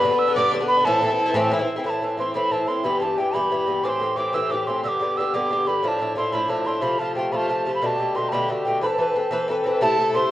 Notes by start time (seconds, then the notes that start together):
Already playing: B4 B5
0.02 G2 D3 B3 D4
0.11 D3 B3 D4
0.19 E6
0.27 D3 B3 D4
0.36 G2 D3 B3 D4 D5 D6
0.52 G2 D3 B3 D4
0.60 D3 B3 D4
0.68 B4 B5
0.77 D3 B3 D4
0.84 A2 E3 C4 E4 A4 A5
1.01 A2 E3 C4 E4
1.10 E3 C4 E4
1.26 E3 C4 E4
1.34 A2 E3 C4 E4
1.50 A2 E3 C4 E4
1.59 E3 C4 E4
1.76 E3 C4 E4
1.84 A2 E3 C4 E4 B5
1.90 A5
2.01 A2 E3 C4 E4
2.17 A2 E3 C4 E4 C6
2.34 A2 E3 C4 E4 B5
2.50 A2 E3 C4 E4 A5
2.67 A2 E3 C4 E4 C6
2.84 G2 E3 B3 G4 B5
3.00 G2 E3 B3 G4 A5
3.17 G2 E3 B3 G4 G5
3.33 G2 E3 B3 G4 B5
3.50 G2 E3 B3 G4
3.66 G2 E3 B3 G4
3.83 A2 E3 C4 G4 D6
3.89 C6
4.00 A2 E3 C4 G4
4.16 A2 E3 C4 G4 D6
4.33 A2 E3 C4 G4 E6
4.50 A2 E3 C4 G4 D6
4.67 A2 E3 C4 G4 C6
4.83 G2 D3 B3 G4 E6
4.88 D6
5.00 G2 D3 B3 G4
5.17 G2 D3 B3 G4 E6
5.34 G2 D3 B3 G4 D6
5.50 G2 D3 B3 G4
5.66 G2 D3 B3 G4 B5
5.83 A2 F3 D4 E4 B5
5.88 A5
5.99 A2 F3 D4 E4
6.15 A2 F3 D4 E4 C6
6.32 A2 F3 D4 E4 B5
6.48 A2 F3 D4 E4 A5
6.65 A2 F3 D4 E4 C6
6.82 C3 F3 A3 F4 B5
6.98 C3 F3 A3 F4 A5
7.15 C3 F3 A3 F4 G5
7.32 C3 F3 A3 F4 B5
7.36 A5
7.48 C3 F3 A3 F4
7.66 C3 F3 A3 F4
7.75 B5
7.82 B2 D3 A3 G4 B5
7.86 A5
7.98 B2 D3 A3 G4
8.15 B2 D3 A3 G4 C6
8.29 B2 D3 A5 B5
8.33 A3 G4
8.48 B2 D3 A3 G4
8.65 B2 D3 A3 G4 G5
8.81 E3 C4 A4 B4 B5
8.86 A5
8.98 E3 C4 A4 B4
9.14 E3 C4 A4 B4
9.31 E3 C4 A4 B4
9.48 E3 C4 A4 B4
9.64 E3 C4 A4 B4
9.74 B4
9.81 C3 A3 E4 A4 A5
9.97 C3 A3 E4 A4
10.13 C3 A3 E4 A4 C5 C6